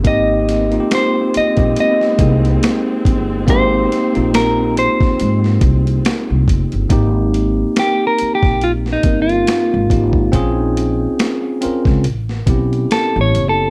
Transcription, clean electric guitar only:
0.07 0.94 D#5 loud
0.95 1.37 C5 medium
1.37 1.79 D#5 medium
1.80 3.03 D#5 medium
3.50 4.30 C5 loud
4.35 4.74 A#4 medium
4.79 6.45 C5 medium
7.79 8.07 G4 medium
8.07 8.35 A#4 medium
8.35 8.63 G4 medium
8.64 8.71 F4 medium
8.93 9.21 D#4 medium
9.22 10.57 F4 medium
10.57 11.31 D#4 medium
12.92 13.20 A4 medium
13.21 13.49 C#5 medium
13.49 13.70 A4 medium

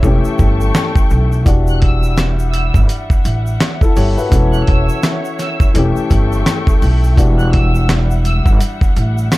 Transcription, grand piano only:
0.02 1.43 E3 medium
0.02 1.44 A3 medium
0.02 1.44 C#4 medium
0.07 1.45 G4 medium
1.44 4.27 E3 medium
1.44 4.28 D4 medium
1.44 3.57 F#4 medium
1.49 3.58 G4 medium
3.83 3.96 E4 medium
3.83 3.96 A4 medium
3.96 4.17 G4 medium
3.96 4.17 C#5 medium
4.18 4.31 F#4 medium
4.18 4.52 B4 medium
4.29 5.71 E3 medium
4.29 5.71 C#4 medium
4.29 5.72 F#4 medium
4.34 5.73 A4 medium
5.74 7.14 E3 medium
5.74 7.15 A3 medium
5.74 7.16 C#4 medium
5.78 7.17 G4 medium
7.16 9.38 E3 medium
7.16 9.38 D4 medium
7.16 9.28 F#4 medium
7.20 9.29 G4 medium

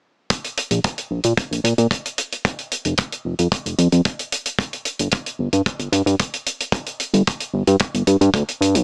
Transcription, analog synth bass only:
0.71 0.80 A#1 medium
1.11 1.20 A#1 medium
1.25 1.33 A#2 medium
1.37 1.49 A#1 soft
1.51 1.60 A#1 medium
1.64 1.74 A#2 medium
1.78 1.87 A#2 medium
2.85 2.94 F1 medium
3.25 3.34 F1 medium
3.39 3.48 F2 medium
3.66 3.74 F1 medium
3.79 3.88 F2 medium
3.93 4.01 F2 medium
5.00 5.08 G1 medium
5.39 5.49 G1 medium
5.53 5.62 G2 medium
5.66 5.77 G1 soft
5.80 5.89 G1 medium
5.93 6.02 G2 medium
6.06 6.15 G2 medium
7.14 7.22 G1 medium
7.54 7.63 G1 medium
7.68 7.76 G2 medium
7.94 8.03 G1 medium
8.07 8.17 G2 medium
8.21 8.30 G2 medium
8.34 8.43 D2 medium
8.61 8.76 G2 medium
8.75 8.84 A#1 loud

